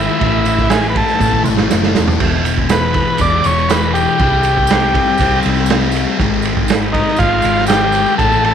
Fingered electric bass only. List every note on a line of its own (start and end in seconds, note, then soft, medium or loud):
0.22 1.01 A1 loud
1.21 1.41 A1 medium
1.48 1.69 G#1 medium
1.72 1.94 F#1 medium
1.98 2.19 E1 medium
2.22 3.00 E1 loud
3.20 3.40 E1 medium
3.46 4.05 E1 loud
4.20 4.99 C2 loud
5.20 5.40 C2 medium
5.45 6.04 C2 loud
6.20 6.99 G#1 loud
7.20 7.39 G#1 medium
7.44 8.03 G#1 loud
8.19 8.54 A1 loud